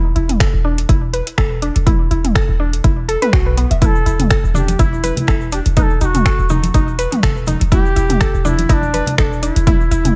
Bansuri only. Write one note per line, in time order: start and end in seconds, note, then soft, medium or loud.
3.82 4.27 A4 loud
3.82 3.86 B4 loud
4.55 4.81 G4 medium
4.80 5.17 E4 medium
5.18 5.50 E4 medium
5.53 5.59 G4 loud
5.77 5.83 B4 loud
5.82 6.00 A4 loud
6.02 6.47 F#4 loud
6.02 6.06 G4 medium
7.72 8.46 G4 loud
8.45 8.70 E4 loud
8.69 9.17 D4 loud
8.69 8.74 D#4 loud
9.17 9.23 D#4 medium
9.22 9.44 D4 medium
9.42 10.15 E4 loud